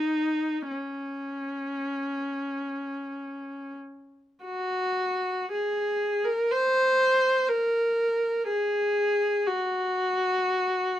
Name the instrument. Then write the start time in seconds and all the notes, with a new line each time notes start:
viola
Already playing: D#4
0.71 C#4
4.45 F#4
5.52 G#4
6.25 A#4
6.52 C5
7.49 A#4
8.48 G#4
9.47 F#4